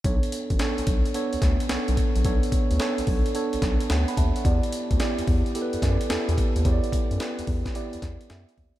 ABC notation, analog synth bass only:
X:1
M:4/4
L:1/16
Q:"Swing 16ths" 1/4=109
K:Bm
V:1 name="Analog synth bass" clef=bass
B,,, z2 A,,, z B,,, B,,, z2 D,, D,, z B,,, B,,, z ^A,,, | B,,, z2 D,, z B,,, B,,, z2 B,,, B,,, z D,, z ^D,, z | E,, z2 D,, z E,, E,, z2 F,, F,, z E,, E,, z ^D,, | E,, z2 F,, z E,, E,, z2 E,, E,, z F,, z ^D,, z |]